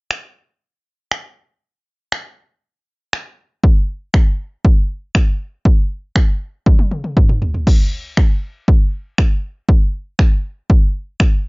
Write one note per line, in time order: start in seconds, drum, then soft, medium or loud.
0.11 finger snap loud
1.11 finger snap loud
2.12 finger snap loud
3.13 finger snap loud
3.64 kick loud
4.14 finger snap loud
4.14 kick loud
4.65 kick loud
5.15 finger snap loud
5.15 kick loud
5.65 kick loud
6.16 finger snap loud
6.16 kick loud
6.66 kick loud
6.66 high tom medium
6.79 high tom soft
6.91 mid tom medium
7.04 mid tom medium
7.17 kick loud
7.17 mid tom medium
7.29 mid tom medium
7.42 floor tom medium
7.54 floor tom medium
7.67 kick loud
7.67 crash medium
8.17 finger snap loud
8.17 kick loud
8.68 kick loud
9.18 finger snap loud
9.18 kick loud
9.69 kick loud
10.19 finger snap loud
10.19 kick loud
10.70 kick loud
11.20 finger snap loud
11.20 kick loud